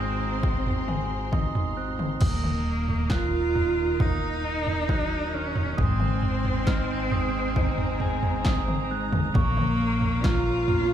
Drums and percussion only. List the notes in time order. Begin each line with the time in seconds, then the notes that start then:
0.43 kick
0.66 floor tom
0.88 mid tom
1.33 kick, mid tom
1.55 floor tom
1.99 mid tom
2.21 kick, floor tom, crash
2.44 mid tom
2.88 floor tom
3.10 kick, snare
3.56 floor tom
4.00 kick, floor tom
4.67 floor tom
4.89 kick
5.56 floor tom
5.78 kick, floor tom
6.00 mid tom
6.23 floor tom
6.45 floor tom
6.67 kick, snare
7.11 floor tom
7.56 kick, floor tom
7.78 floor tom
8.00 floor tom
8.23 floor tom
8.45 kick, snare
8.68 mid tom
9.13 floor tom, mid tom
9.34 kick, floor tom
9.57 mid tom
10.01 floor tom
10.24 kick, snare
10.68 floor tom